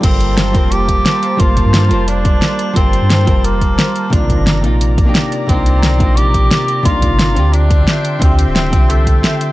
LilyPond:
<<
  \new Staff \with { instrumentName = "Analog synth pad" } { \time 4/4 \key g \minor \tempo 4 = 176 <bes c'' a''>1~ | <bes c'' a''>1~ | <bes c'' a''>1 | <d'' bes''>1~ |
<d'' bes''>1~ | <d'' bes''>2 <e'' g'' c'''>2~ | <e'' g'' c'''>1 | }
  \new Staff \with { instrumentName = "Hollow-body jazz guitar" } { \time 4/4 \key g \minor <g f' a' bes' c''>4. <g f' a' bes' c''>2~ <g f' a' bes' c''>8 | <g f' a' bes' c''>4. <g f' a' bes' c''>2~ <g f' a' bes' c''>8 | <g f' a' bes' c''>4. <g f' a' bes' c''>2~ <g f' a' bes' c''>8 | <c ees bes d' f'>4. <c bes d' ees' f'>4~ <c bes d' ees' f'>16 <c bes d' ees' g'>4~ <c bes d' ees' g'>16 |
<c bes d' ees' f'>4. <c bes d' ees' f'>2~ <c bes d' ees' f'>8 | <c bes d' ees' f'>4. <d c' e' f' g'>2~ <d c' e' f' g'>8 | <d c' e' f' g'>4. <d c' e' f' g'>2~ <d c' e' f' g'>8 | }
  \new Staff \with { instrumentName = "Tenor saxophone" } { \time 4/4 \key g \minor c'2 g'2 | f'2 d'2 | c'2 bes2 | d'4. r2 r8 |
c'2 g'2 | f'2 d'2 | c'2 a2 | }
  \new Staff \with { instrumentName = "Sub bass" } { \clef bass \time 4/4 \key g \minor g,,4. f,,4. r4 | g,,8. g,8. f,,4. r4 | g,,8. g,8. f,,4. r4 | c,8. g,,8. bes,,4. r4 |
c,4. bes,,4. r4 | c,8. g,,8. d,4. r4 | d,8. d,,8. c,4. r4 | }
  \new DrumStaff \with { instrumentName = "Drums" } \drummode { \time 4/4 <cymc hh bd>8 hh8 <hh sn>8 <hh bd>8 hh8 <hh bd>8 <hh sn>8 hh8 | <hh bd>8 <hh bd>8 <hh sn>8 hh8 hh8 <hh bd>8 <hh sn>8 hh8 | <hh bd>8 hh8 <hh sn>8 <hh bd>8 hh8 <hh bd>8 <hh sn>8 hh8 | <hh bd>8 <hh bd>8 <hh sn>8 hh8 hh8 <hh bd>8 <hh sn>8 hh8 |
<hh bd>8 hh8 <hh sn>8 <hh bd>8 hh8 <hh bd>8 <hh sn>8 hh8 | <hh bd>8 <hh bd>8 <hh sn>8 hh8 hh8 <hh bd>8 <hh sn>8 hh8 | <hh bd>8 hh8 <hh sn>8 <hh bd>8 hh8 <hh bd>8 <hh sn>8 hh8 | }
>>